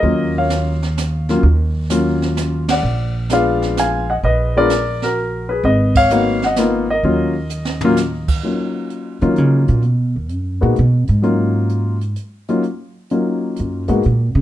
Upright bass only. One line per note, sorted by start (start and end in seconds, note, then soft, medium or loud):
0.03 1.39 D#2 medium
1.43 2.79 D#2 medium
2.83 4.19 A#1 medium
4.23 5.59 A#1 medium
5.64 6.99 G#1 medium
7.03 8.39 D#2 medium
9.22 9.38 D#3 medium
9.38 9.68 C#3 medium
9.69 9.85 A#2 medium
9.85 10.15 B2 medium
10.16 10.32 D#2 soft
10.32 10.62 F#2 medium
10.63 10.76 A#2 medium
10.79 11.08 B2 medium
11.09 12.13 G#2 medium
13.59 13.88 F#2 medium
13.89 14.03 G#2 medium
14.06 14.34 A#2 medium
14.35 14.41 C#3 medium